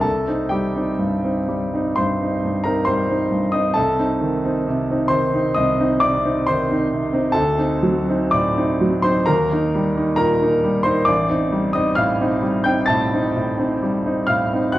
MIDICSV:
0, 0, Header, 1, 2, 480
1, 0, Start_track
1, 0, Tempo, 969305
1, 22, Time_signature, 4, 2, 24, 8
1, 983, Tempo, 896861
1, 3863, Tempo, 985222
1, 4343, Tempo, 934579
1, 4823, Tempo, 898204
1, 6263, Tempo, 927357
1, 7715, End_track
2, 0, Start_track
2, 0, Title_t, "Grand piano"
2, 0, Program_c, 0, 0
2, 0, Control_c, 0, 64, 127
2, 0, Note_on_c, 0, 36, 42
2, 7, Note_on_c, 0, 81, 54
2, 15, Note_on_c, 0, 69, 43
2, 32, Control_c, 0, 64, 0
2, 120, Control_c, 0, 64, 127
2, 123, Note_off_c, 0, 36, 0
2, 136, Note_on_c, 0, 60, 32
2, 139, Note_on_c, 0, 63, 35
2, 241, Note_off_c, 0, 69, 0
2, 245, Note_on_c, 0, 79, 60
2, 246, Note_off_c, 0, 60, 0
2, 248, Note_off_c, 0, 63, 0
2, 253, Note_on_c, 0, 67, 45
2, 254, Note_off_c, 0, 81, 0
2, 257, Note_on_c, 0, 55, 37
2, 375, Note_on_c, 0, 60, 30
2, 378, Note_on_c, 0, 63, 33
2, 448, Note_off_c, 0, 55, 0
2, 483, Note_off_c, 0, 60, 0
2, 484, Note_off_c, 0, 63, 0
2, 490, Note_on_c, 0, 43, 33
2, 615, Note_on_c, 0, 60, 31
2, 616, Note_on_c, 0, 63, 35
2, 687, Note_off_c, 0, 43, 0
2, 727, Note_off_c, 0, 60, 0
2, 727, Note_off_c, 0, 63, 0
2, 736, Note_on_c, 0, 55, 34
2, 862, Note_on_c, 0, 60, 31
2, 867, Note_on_c, 0, 63, 36
2, 934, Note_off_c, 0, 55, 0
2, 959, Note_off_c, 0, 67, 0
2, 969, Note_on_c, 0, 84, 59
2, 970, Note_off_c, 0, 60, 0
2, 973, Note_off_c, 0, 63, 0
2, 975, Note_off_c, 0, 79, 0
2, 977, Note_on_c, 0, 72, 45
2, 981, Note_on_c, 0, 43, 37
2, 1102, Note_off_c, 0, 43, 0
2, 1103, Note_on_c, 0, 60, 35
2, 1109, Note_on_c, 0, 63, 38
2, 1212, Note_off_c, 0, 60, 0
2, 1215, Note_off_c, 0, 63, 0
2, 1223, Note_on_c, 0, 43, 35
2, 1318, Note_off_c, 0, 72, 0
2, 1331, Note_on_c, 0, 82, 56
2, 1335, Note_off_c, 0, 84, 0
2, 1340, Note_on_c, 0, 70, 43
2, 1341, Note_on_c, 0, 60, 34
2, 1344, Note_on_c, 0, 63, 33
2, 1411, Note_off_c, 0, 43, 0
2, 1445, Note_on_c, 0, 84, 64
2, 1447, Note_off_c, 0, 60, 0
2, 1449, Note_off_c, 0, 63, 0
2, 1450, Note_off_c, 0, 70, 0
2, 1452, Note_on_c, 0, 72, 50
2, 1454, Note_off_c, 0, 82, 0
2, 1458, Note_on_c, 0, 55, 36
2, 1578, Note_on_c, 0, 60, 33
2, 1582, Note_on_c, 0, 63, 35
2, 1649, Note_off_c, 0, 55, 0
2, 1686, Note_off_c, 0, 60, 0
2, 1688, Note_off_c, 0, 63, 0
2, 1696, Note_on_c, 0, 43, 36
2, 1794, Note_off_c, 0, 72, 0
2, 1804, Note_on_c, 0, 87, 60
2, 1810, Note_on_c, 0, 75, 44
2, 1812, Note_off_c, 0, 84, 0
2, 1815, Note_on_c, 0, 60, 34
2, 1815, Note_on_c, 0, 63, 36
2, 1891, Note_off_c, 0, 43, 0
2, 1921, Note_on_c, 0, 81, 63
2, 1926, Note_off_c, 0, 60, 0
2, 1926, Note_off_c, 0, 63, 0
2, 1927, Note_off_c, 0, 75, 0
2, 1930, Note_on_c, 0, 69, 48
2, 1932, Note_off_c, 0, 87, 0
2, 1934, Note_on_c, 0, 36, 45
2, 1949, Control_c, 0, 64, 0
2, 2044, Control_c, 0, 64, 127
2, 2054, Note_off_c, 0, 36, 0
2, 2056, Note_on_c, 0, 60, 35
2, 2058, Note_on_c, 0, 63, 37
2, 2167, Note_off_c, 0, 60, 0
2, 2169, Note_off_c, 0, 63, 0
2, 2173, Note_on_c, 0, 51, 39
2, 2299, Note_on_c, 0, 60, 35
2, 2301, Note_on_c, 0, 63, 37
2, 2372, Note_off_c, 0, 51, 0
2, 2411, Note_off_c, 0, 60, 0
2, 2412, Note_off_c, 0, 63, 0
2, 2422, Note_on_c, 0, 48, 39
2, 2542, Note_on_c, 0, 60, 35
2, 2547, Note_on_c, 0, 63, 37
2, 2617, Note_off_c, 0, 48, 0
2, 2640, Note_on_c, 0, 84, 67
2, 2641, Note_off_c, 0, 69, 0
2, 2645, Note_on_c, 0, 72, 51
2, 2652, Note_off_c, 0, 60, 0
2, 2652, Note_on_c, 0, 51, 41
2, 2655, Note_off_c, 0, 63, 0
2, 2657, Note_off_c, 0, 81, 0
2, 2777, Note_on_c, 0, 60, 34
2, 2781, Note_on_c, 0, 63, 42
2, 2852, Note_off_c, 0, 51, 0
2, 2880, Note_off_c, 0, 72, 0
2, 2889, Note_on_c, 0, 87, 73
2, 2890, Note_off_c, 0, 60, 0
2, 2893, Note_off_c, 0, 63, 0
2, 2895, Note_off_c, 0, 84, 0
2, 2896, Note_on_c, 0, 75, 54
2, 2903, Note_on_c, 0, 36, 42
2, 3024, Note_off_c, 0, 36, 0
2, 3026, Note_on_c, 0, 60, 39
2, 3027, Note_on_c, 0, 63, 39
2, 3129, Note_off_c, 0, 75, 0
2, 3133, Note_on_c, 0, 86, 75
2, 3138, Note_off_c, 0, 60, 0
2, 3138, Note_on_c, 0, 74, 54
2, 3139, Note_off_c, 0, 63, 0
2, 3143, Note_off_c, 0, 87, 0
2, 3145, Note_on_c, 0, 48, 42
2, 3265, Note_on_c, 0, 60, 36
2, 3268, Note_on_c, 0, 63, 41
2, 3343, Note_off_c, 0, 48, 0
2, 3370, Note_off_c, 0, 74, 0
2, 3378, Note_off_c, 0, 60, 0
2, 3379, Note_off_c, 0, 63, 0
2, 3381, Note_on_c, 0, 84, 71
2, 3385, Note_off_c, 0, 86, 0
2, 3389, Note_on_c, 0, 72, 52
2, 3397, Note_on_c, 0, 51, 39
2, 3513, Note_on_c, 0, 60, 35
2, 3514, Note_on_c, 0, 63, 42
2, 3584, Note_off_c, 0, 51, 0
2, 3618, Note_off_c, 0, 60, 0
2, 3618, Note_off_c, 0, 63, 0
2, 3626, Note_on_c, 0, 48, 40
2, 3738, Note_on_c, 0, 60, 39
2, 3742, Note_on_c, 0, 63, 41
2, 3814, Note_off_c, 0, 48, 0
2, 3838, Note_off_c, 0, 72, 0
2, 3839, Note_on_c, 0, 81, 73
2, 3844, Note_on_c, 0, 69, 52
2, 3847, Note_off_c, 0, 60, 0
2, 3849, Note_off_c, 0, 63, 0
2, 3851, Note_on_c, 0, 38, 46
2, 3856, Note_off_c, 0, 84, 0
2, 3869, Control_c, 0, 64, 0
2, 3959, Control_c, 0, 64, 127
2, 3966, Note_off_c, 0, 38, 0
2, 3967, Note_on_c, 0, 60, 38
2, 3971, Note_on_c, 0, 63, 38
2, 4080, Note_off_c, 0, 60, 0
2, 4082, Note_off_c, 0, 63, 0
2, 4087, Note_on_c, 0, 54, 42
2, 4215, Note_on_c, 0, 60, 39
2, 4218, Note_on_c, 0, 63, 40
2, 4290, Note_off_c, 0, 54, 0
2, 4316, Note_off_c, 0, 69, 0
2, 4323, Note_on_c, 0, 86, 72
2, 4328, Note_off_c, 0, 60, 0
2, 4329, Note_on_c, 0, 74, 53
2, 4330, Note_off_c, 0, 63, 0
2, 4333, Note_off_c, 0, 81, 0
2, 4334, Note_on_c, 0, 45, 40
2, 4458, Note_on_c, 0, 60, 38
2, 4458, Note_on_c, 0, 63, 44
2, 4536, Note_off_c, 0, 45, 0
2, 4571, Note_off_c, 0, 60, 0
2, 4571, Note_off_c, 0, 63, 0
2, 4580, Note_on_c, 0, 54, 41
2, 4678, Note_off_c, 0, 74, 0
2, 4689, Note_on_c, 0, 84, 72
2, 4696, Note_off_c, 0, 86, 0
2, 4696, Note_on_c, 0, 72, 53
2, 4698, Note_on_c, 0, 63, 43
2, 4700, Note_on_c, 0, 60, 41
2, 4772, Note_off_c, 0, 54, 0
2, 4807, Note_off_c, 0, 63, 0
2, 4808, Note_off_c, 0, 60, 0
2, 4808, Note_on_c, 0, 82, 74
2, 4809, Note_off_c, 0, 72, 0
2, 4814, Note_on_c, 0, 70, 59
2, 4815, Note_off_c, 0, 84, 0
2, 4821, Note_on_c, 0, 39, 55
2, 4831, Control_c, 0, 64, 0
2, 4913, Control_c, 0, 64, 127
2, 4939, Note_off_c, 0, 39, 0
2, 4948, Note_on_c, 0, 58, 41
2, 4951, Note_on_c, 0, 63, 45
2, 5054, Note_off_c, 0, 58, 0
2, 5056, Note_off_c, 0, 63, 0
2, 5070, Note_on_c, 0, 55, 44
2, 5187, Note_on_c, 0, 58, 36
2, 5190, Note_on_c, 0, 63, 45
2, 5259, Note_off_c, 0, 55, 0
2, 5277, Note_off_c, 0, 70, 0
2, 5283, Note_off_c, 0, 82, 0
2, 5291, Note_on_c, 0, 82, 76
2, 5294, Note_off_c, 0, 58, 0
2, 5295, Note_off_c, 0, 63, 0
2, 5297, Note_on_c, 0, 70, 55
2, 5304, Note_on_c, 0, 46, 43
2, 5431, Note_on_c, 0, 58, 39
2, 5433, Note_on_c, 0, 63, 43
2, 5496, Note_off_c, 0, 46, 0
2, 5535, Note_off_c, 0, 58, 0
2, 5537, Note_off_c, 0, 63, 0
2, 5545, Note_on_c, 0, 55, 44
2, 5639, Note_off_c, 0, 70, 0
2, 5649, Note_on_c, 0, 84, 67
2, 5653, Note_on_c, 0, 72, 55
2, 5657, Note_off_c, 0, 82, 0
2, 5657, Note_on_c, 0, 58, 40
2, 5660, Note_on_c, 0, 63, 42
2, 5736, Note_off_c, 0, 55, 0
2, 5767, Note_off_c, 0, 58, 0
2, 5767, Note_on_c, 0, 86, 72
2, 5769, Note_off_c, 0, 63, 0
2, 5769, Note_off_c, 0, 72, 0
2, 5775, Note_off_c, 0, 84, 0
2, 5775, Note_on_c, 0, 74, 56
2, 5780, Note_on_c, 0, 33, 50
2, 5792, Control_c, 0, 64, 0
2, 5878, Control_c, 0, 64, 127
2, 5897, Note_off_c, 0, 33, 0
2, 5898, Note_on_c, 0, 60, 38
2, 5898, Note_on_c, 0, 63, 46
2, 6007, Note_off_c, 0, 60, 0
2, 6007, Note_off_c, 0, 63, 0
2, 6020, Note_on_c, 0, 55, 41
2, 6117, Note_off_c, 0, 74, 0
2, 6130, Note_on_c, 0, 87, 72
2, 6134, Note_off_c, 0, 86, 0
2, 6140, Note_on_c, 0, 60, 37
2, 6140, Note_on_c, 0, 75, 51
2, 6145, Note_on_c, 0, 63, 42
2, 6213, Note_off_c, 0, 55, 0
2, 6248, Note_on_c, 0, 89, 76
2, 6250, Note_off_c, 0, 60, 0
2, 6253, Note_off_c, 0, 63, 0
2, 6253, Note_off_c, 0, 75, 0
2, 6253, Note_on_c, 0, 77, 56
2, 6257, Note_off_c, 0, 87, 0
2, 6258, Note_on_c, 0, 45, 45
2, 6379, Note_on_c, 0, 60, 40
2, 6383, Note_on_c, 0, 63, 45
2, 6450, Note_off_c, 0, 45, 0
2, 6487, Note_off_c, 0, 60, 0
2, 6489, Note_off_c, 0, 63, 0
2, 6490, Note_on_c, 0, 55, 41
2, 6593, Note_off_c, 0, 77, 0
2, 6603, Note_on_c, 0, 91, 69
2, 6612, Note_off_c, 0, 89, 0
2, 6612, Note_on_c, 0, 79, 59
2, 6613, Note_on_c, 0, 60, 41
2, 6616, Note_on_c, 0, 63, 43
2, 6687, Note_off_c, 0, 55, 0
2, 6716, Note_on_c, 0, 93, 81
2, 6724, Note_off_c, 0, 60, 0
2, 6725, Note_on_c, 0, 81, 66
2, 6726, Note_off_c, 0, 63, 0
2, 6727, Note_off_c, 0, 79, 0
2, 6732, Note_off_c, 0, 91, 0
2, 6732, Note_on_c, 0, 45, 46
2, 6853, Note_off_c, 0, 45, 0
2, 6858, Note_on_c, 0, 60, 40
2, 6861, Note_on_c, 0, 63, 48
2, 6969, Note_off_c, 0, 60, 0
2, 6971, Note_off_c, 0, 63, 0
2, 6979, Note_on_c, 0, 45, 44
2, 7093, Note_on_c, 0, 60, 40
2, 7096, Note_on_c, 0, 63, 43
2, 7175, Note_off_c, 0, 45, 0
2, 7207, Note_off_c, 0, 60, 0
2, 7208, Note_off_c, 0, 63, 0
2, 7217, Note_on_c, 0, 55, 39
2, 7339, Note_on_c, 0, 60, 37
2, 7341, Note_on_c, 0, 63, 41
2, 7414, Note_off_c, 0, 55, 0
2, 7437, Note_off_c, 0, 81, 0
2, 7446, Note_on_c, 0, 89, 76
2, 7450, Note_off_c, 0, 60, 0
2, 7451, Note_off_c, 0, 63, 0
2, 7451, Note_on_c, 0, 77, 57
2, 7454, Note_off_c, 0, 93, 0
2, 7458, Note_on_c, 0, 45, 41
2, 7583, Note_on_c, 0, 63, 42
2, 7585, Note_on_c, 0, 60, 38
2, 7652, Note_off_c, 0, 45, 0
2, 7679, Note_off_c, 0, 77, 0
2, 7683, Note_on_c, 0, 90, 68
2, 7688, Note_on_c, 0, 78, 50
2, 7691, Note_off_c, 0, 60, 0
2, 7691, Note_off_c, 0, 63, 0
2, 7694, Note_off_c, 0, 89, 0
2, 7695, Note_on_c, 0, 38, 52
2, 7713, Control_c, 0, 64, 0
2, 7715, Note_off_c, 0, 38, 0
2, 7715, Note_off_c, 0, 78, 0
2, 7715, Note_off_c, 0, 90, 0
2, 7715, End_track
0, 0, End_of_file